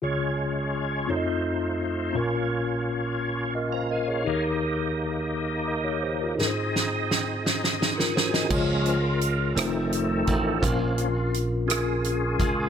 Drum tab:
CC |------------|------------|------------|------------|
HH |------------|------------|------------|------------|
SD |------------|------------|------------|o-o-o-oooooo|
BD |------------|------------|------------|------------|

CC |x-----------|------------|
HH |--x-x-x-x-x-|x-x-x-x-x-x-|
SD |------r-----|------r-----|
BD |o---------o-|o---------o-|